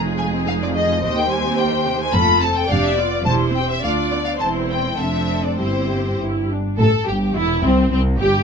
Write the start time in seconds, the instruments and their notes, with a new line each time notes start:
Already playing: double bass section F1, cello section F2, viola section D#4, violin section G#4
0.05 viola section F3
0.18 viola section G#3, violin section G#5
0.32 viola section C4
0.46 viola section G#3, violin section F5
0.59 viola section F3, violin section D5
0.74 viola section D#3, violin section D#5
0.87 viola section F3
1.01 double bass section D#2, cello section D#2, viola section C3 G4, violin section C5 D#5
1.15 viola section D#3, violin section G5
1.29 viola section G3, violin section G#5
1.43 viola section C4
1.57 viola section G3, violin section G5
1.70 viola section D#3
1.86 viola section C3
1.99 viola section D#3, violin section G#5
2.12 double bass section F1, cello section F2, viola section A3 F4, violin section A4 B5
2.41 viola section C4 A4, violin section A5
2.57 violin section G5
2.68 double bass section F1, cello section F2, viola section D4 G4, violin section D5 F5
2.84 violin section E5
2.97 viola section B3 F4, violin section D5
3.25 double bass section E1, cello section E2, viola section G3 E4, violin section C5 A5
3.54 viola section C4 G4, violin section G5
3.70 violin section E5
3.82 double bass section D2, cello section D2, viola section D4 F4, violin section D5 F5
4.11 viola section B3 D4, violin section D5
4.25 violin section F5
4.38 double bass section E1, cello section E2, viola section C4 E4, violin section C5 A5
4.69 violin section G5
4.98 double bass section F1, cello section F2, viola section C4 D4, violin section A4 E5
5.44 violin section D5
5.58 double bass section G1, cello section G2, viola section C4 E4, violin section G4 C5
6.19 double bass section G1, cello section G2, viola section E4
6.49 viola section D4
6.78 double bass section A1, cello section A2, violin section A4, viola section A4
7.07 double bass section G1, cello section G2, violin section G4, viola section G4
7.35 double bass section E1, cello section E2, violin section E4, viola section E4
7.63 double bass section C2, cello section C2, violin section C4, viola section C4
7.91 double bass section C2, cello section C2, violin section C4, viola section C4
8.18 double bass section G1, cello section G2, violin section G4, viola section G4